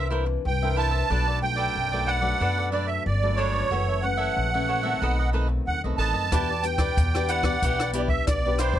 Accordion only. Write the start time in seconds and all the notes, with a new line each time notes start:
0.46 G5
0.78 A5
1.43 G5
2.07 F#5
2.73 D5
2.87 E5
3.06 D5
3.36 C#5
4.02 F#5
5.67 F#5
5.98 A5
6.63 G5
7.28 F#5
7.93 D5
8.08 E5
8.27 D5
8.59 C5